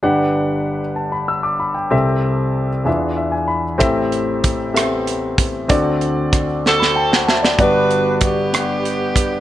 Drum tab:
HH |------------|------------|x-x-x-x-x-x-|x-x-x-------|
SD |------------|------------|------r-----|----r-oo-ooo|
BD |------------|------------|o---o-----o-|o---o-------|

HH |x-x-x-x-x-x-|
SD |------r-----|
BD |o---o-----o-|